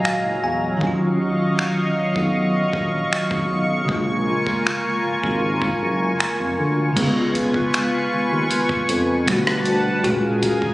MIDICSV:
0, 0, Header, 1, 5, 480
1, 0, Start_track
1, 0, Key_signature, -6, "minor"
1, 0, Tempo, 769231
1, 506, Time_signature, 4, 2, 24, 8
1, 6701, End_track
2, 0, Start_track
2, 0, Title_t, "Analog synth pad"
2, 0, Program_c, 0, 89
2, 0, Note_on_c, 0, 54, 80
2, 0, Note_on_c, 0, 77, 68
2, 0, Note_on_c, 0, 80, 74
2, 0, Note_on_c, 0, 82, 84
2, 488, Note_off_c, 0, 77, 0
2, 488, Note_off_c, 0, 80, 0
2, 488, Note_off_c, 0, 82, 0
2, 507, Note_on_c, 0, 75, 69
2, 508, Note_on_c, 0, 85, 90
2, 509, Note_on_c, 0, 77, 67
2, 2402, Note_off_c, 0, 54, 0
2, 2408, Note_off_c, 0, 75, 0
2, 2408, Note_off_c, 0, 77, 0
2, 2427, Note_on_c, 0, 70, 68
2, 2428, Note_on_c, 0, 65, 81
2, 2428, Note_on_c, 0, 80, 72
2, 4322, Note_off_c, 0, 85, 0
2, 4328, Note_off_c, 0, 65, 0
2, 4328, Note_off_c, 0, 70, 0
2, 4328, Note_off_c, 0, 80, 0
2, 4347, Note_on_c, 0, 80, 70
2, 4348, Note_on_c, 0, 71, 72
2, 4349, Note_on_c, 0, 65, 84
2, 4349, Note_on_c, 0, 85, 89
2, 5772, Note_off_c, 0, 80, 0
2, 5773, Note_off_c, 0, 65, 0
2, 5773, Note_off_c, 0, 71, 0
2, 5773, Note_off_c, 0, 85, 0
2, 5786, Note_on_c, 0, 81, 88
2, 5787, Note_on_c, 0, 55, 77
2, 5787, Note_on_c, 0, 71, 68
2, 5787, Note_on_c, 0, 78, 72
2, 6261, Note_off_c, 0, 81, 0
2, 6262, Note_off_c, 0, 55, 0
2, 6262, Note_off_c, 0, 71, 0
2, 6262, Note_off_c, 0, 78, 0
2, 6266, Note_on_c, 0, 68, 77
2, 6266, Note_on_c, 0, 70, 73
2, 6266, Note_on_c, 0, 77, 77
2, 6266, Note_on_c, 0, 80, 83
2, 6701, Note_off_c, 0, 68, 0
2, 6701, Note_off_c, 0, 70, 0
2, 6701, Note_off_c, 0, 77, 0
2, 6701, Note_off_c, 0, 80, 0
2, 6701, End_track
3, 0, Start_track
3, 0, Title_t, "Tine electric piano"
3, 0, Program_c, 1, 4
3, 0, Control_c, 1, 64, 127
3, 0, Note_on_c, 1, 46, 68
3, 0, Note_on_c, 1, 54, 63
3, 0, Note_on_c, 1, 56, 61
3, 0, Note_on_c, 1, 65, 74
3, 0, Note_on_c, 1, 75, 62
3, 33, Note_on_c, 1, 77, 68
3, 253, Note_off_c, 1, 77, 0
3, 273, Note_on_c, 1, 80, 68
3, 469, Note_off_c, 1, 46, 0
3, 479, Note_off_c, 1, 54, 0
3, 482, Note_on_c, 1, 51, 71
3, 489, Note_off_c, 1, 56, 0
3, 493, Note_off_c, 1, 80, 0
3, 500, Note_off_c, 1, 65, 0
3, 502, Note_on_c, 1, 54, 65
3, 513, Control_c, 1, 64, 0
3, 519, Note_off_c, 1, 75, 0
3, 522, Note_on_c, 1, 61, 65
3, 542, Note_on_c, 1, 65, 76
3, 608, Control_c, 1, 64, 127
3, 2389, Note_off_c, 1, 51, 0
3, 2399, Note_off_c, 1, 54, 0
3, 2401, Note_on_c, 1, 49, 67
3, 2409, Note_off_c, 1, 61, 0
3, 2419, Note_off_c, 1, 65, 0
3, 2421, Note_on_c, 1, 56, 63
3, 2434, Control_c, 1, 64, 0
3, 2442, Note_on_c, 1, 58, 67
3, 2462, Note_on_c, 1, 65, 79
3, 2553, Control_c, 1, 64, 127
3, 4309, Note_off_c, 1, 49, 0
3, 4319, Note_off_c, 1, 56, 0
3, 4323, Note_on_c, 1, 49, 73
3, 4329, Note_off_c, 1, 58, 0
3, 4339, Note_off_c, 1, 65, 0
3, 4344, Note_on_c, 1, 56, 66
3, 4354, Control_c, 1, 64, 0
3, 4363, Note_on_c, 1, 59, 68
3, 4384, Note_on_c, 1, 65, 80
3, 4459, Control_c, 1, 64, 127
3, 5750, Note_off_c, 1, 49, 0
3, 5760, Note_off_c, 1, 56, 0
3, 5770, Note_off_c, 1, 59, 0
3, 5778, Note_on_c, 1, 47, 76
3, 5780, Note_off_c, 1, 65, 0
3, 5789, Note_on_c, 1, 55, 71
3, 5794, Control_c, 1, 64, 0
3, 5799, Note_on_c, 1, 57, 68
3, 5809, Note_on_c, 1, 66, 87
3, 5918, Control_c, 1, 64, 127
3, 6243, Note_on_c, 1, 46, 70
3, 6256, Note_off_c, 1, 66, 0
3, 6262, Note_off_c, 1, 47, 0
3, 6263, Note_on_c, 1, 66, 71
3, 6268, Note_off_c, 1, 55, 0
3, 6273, Note_off_c, 1, 57, 0
3, 6273, Control_c, 1, 64, 0
3, 6284, Note_on_c, 1, 56, 66
3, 6304, Note_on_c, 1, 65, 85
3, 6397, Control_c, 1, 64, 127
3, 6701, Note_off_c, 1, 46, 0
3, 6701, Note_off_c, 1, 56, 0
3, 6701, Note_off_c, 1, 65, 0
3, 6701, Note_off_c, 1, 66, 0
3, 6701, End_track
4, 0, Start_track
4, 0, Title_t, "Analog synth bass"
4, 0, Program_c, 2, 38
4, 150, Note_on_c, 2, 30, 89
4, 245, Note_off_c, 2, 30, 0
4, 270, Note_on_c, 2, 40, 81
4, 462, Note_off_c, 2, 40, 0
4, 508, Note_on_c, 2, 39, 111
4, 798, Note_off_c, 2, 39, 0
4, 870, Note_on_c, 2, 35, 46
4, 917, Note_off_c, 2, 35, 0
4, 1229, Note_on_c, 2, 35, 48
4, 1276, Note_off_c, 2, 35, 0
4, 1348, Note_on_c, 2, 35, 93
4, 1638, Note_off_c, 2, 35, 0
4, 1708, Note_on_c, 2, 34, 97
4, 1901, Note_off_c, 2, 34, 0
4, 2066, Note_on_c, 2, 32, 92
4, 2163, Note_off_c, 2, 32, 0
4, 2189, Note_on_c, 2, 35, 90
4, 2381, Note_off_c, 2, 35, 0
4, 2428, Note_on_c, 2, 34, 99
4, 2718, Note_off_c, 2, 34, 0
4, 2788, Note_on_c, 2, 32, 45
4, 2836, Note_off_c, 2, 32, 0
4, 3150, Note_on_c, 2, 32, 46
4, 3197, Note_off_c, 2, 32, 0
4, 3268, Note_on_c, 2, 32, 86
4, 3558, Note_off_c, 2, 32, 0
4, 3631, Note_on_c, 2, 30, 96
4, 3823, Note_off_c, 2, 30, 0
4, 3991, Note_on_c, 2, 29, 89
4, 4086, Note_off_c, 2, 29, 0
4, 4110, Note_on_c, 2, 38, 87
4, 4302, Note_off_c, 2, 38, 0
4, 4348, Note_on_c, 2, 37, 116
4, 4735, Note_off_c, 2, 37, 0
4, 5072, Note_on_c, 2, 39, 49
4, 5118, Note_off_c, 2, 39, 0
4, 5190, Note_on_c, 2, 39, 92
4, 5286, Note_off_c, 2, 39, 0
4, 5550, Note_on_c, 2, 41, 106
4, 5790, Note_on_c, 2, 31, 103
4, 5800, Note_off_c, 2, 41, 0
4, 5983, Note_off_c, 2, 31, 0
4, 6031, Note_on_c, 2, 38, 94
4, 6223, Note_off_c, 2, 38, 0
4, 6269, Note_on_c, 2, 37, 115
4, 6655, Note_off_c, 2, 37, 0
4, 6701, End_track
5, 0, Start_track
5, 0, Title_t, "Drums"
5, 32, Note_on_c, 9, 26, 104
5, 94, Note_off_c, 9, 26, 0
5, 507, Note_on_c, 9, 36, 94
5, 569, Note_off_c, 9, 36, 0
5, 991, Note_on_c, 9, 26, 104
5, 1054, Note_off_c, 9, 26, 0
5, 1346, Note_on_c, 9, 36, 79
5, 1409, Note_off_c, 9, 36, 0
5, 1706, Note_on_c, 9, 36, 90
5, 1769, Note_off_c, 9, 36, 0
5, 1951, Note_on_c, 9, 26, 98
5, 2013, Note_off_c, 9, 26, 0
5, 2065, Note_on_c, 9, 36, 92
5, 2127, Note_off_c, 9, 36, 0
5, 2427, Note_on_c, 9, 36, 93
5, 2489, Note_off_c, 9, 36, 0
5, 2786, Note_on_c, 9, 36, 81
5, 2849, Note_off_c, 9, 36, 0
5, 2912, Note_on_c, 9, 26, 103
5, 2974, Note_off_c, 9, 26, 0
5, 3267, Note_on_c, 9, 36, 74
5, 3329, Note_off_c, 9, 36, 0
5, 3505, Note_on_c, 9, 36, 91
5, 3567, Note_off_c, 9, 36, 0
5, 3871, Note_on_c, 9, 26, 100
5, 3934, Note_off_c, 9, 26, 0
5, 4347, Note_on_c, 9, 36, 103
5, 4347, Note_on_c, 9, 42, 66
5, 4347, Note_on_c, 9, 49, 93
5, 4409, Note_off_c, 9, 36, 0
5, 4409, Note_off_c, 9, 42, 0
5, 4409, Note_off_c, 9, 49, 0
5, 4588, Note_on_c, 9, 36, 78
5, 4588, Note_on_c, 9, 42, 71
5, 4650, Note_off_c, 9, 36, 0
5, 4650, Note_off_c, 9, 42, 0
5, 4707, Note_on_c, 9, 36, 89
5, 4769, Note_off_c, 9, 36, 0
5, 4829, Note_on_c, 9, 42, 66
5, 4831, Note_on_c, 9, 26, 107
5, 4892, Note_off_c, 9, 42, 0
5, 4894, Note_off_c, 9, 26, 0
5, 5308, Note_on_c, 9, 42, 57
5, 5370, Note_off_c, 9, 42, 0
5, 5425, Note_on_c, 9, 36, 96
5, 5487, Note_off_c, 9, 36, 0
5, 5547, Note_on_c, 9, 42, 68
5, 5609, Note_off_c, 9, 42, 0
5, 5788, Note_on_c, 9, 42, 58
5, 5791, Note_on_c, 9, 26, 111
5, 5850, Note_off_c, 9, 42, 0
5, 5854, Note_off_c, 9, 26, 0
5, 5910, Note_on_c, 9, 37, 105
5, 5973, Note_off_c, 9, 37, 0
5, 6025, Note_on_c, 9, 42, 55
5, 6087, Note_off_c, 9, 42, 0
5, 6267, Note_on_c, 9, 36, 101
5, 6267, Note_on_c, 9, 42, 65
5, 6330, Note_off_c, 9, 36, 0
5, 6330, Note_off_c, 9, 42, 0
5, 6506, Note_on_c, 9, 42, 72
5, 6507, Note_on_c, 9, 36, 79
5, 6568, Note_off_c, 9, 42, 0
5, 6570, Note_off_c, 9, 36, 0
5, 6627, Note_on_c, 9, 36, 90
5, 6689, Note_off_c, 9, 36, 0
5, 6701, End_track
0, 0, End_of_file